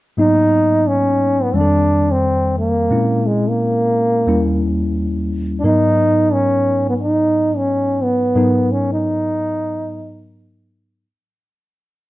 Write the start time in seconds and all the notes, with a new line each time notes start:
0.17 G#2 F#3 A#3 B3 D#4
0.88 C#4
1.43 B3
1.53 F2 D#3 G3 G#3 C4 D4
1.61 A4
2.12 C4
2.59 A#3
2.90 A#2 G#3 C4 C#4 E4
3.26 G#3
3.48 A#3
4.27 D#2 G3 A#3 C#4 E4
5.60 G#2 D4
5.64 F#3 B3 D#4 A#4
6.33 C#4
6.89 B3
7.02 D#4
7.57 C#4
8.03 B3
8.35 G#2 F#3 B3 D#4 A#4
8.72 C#4
8.93 D#4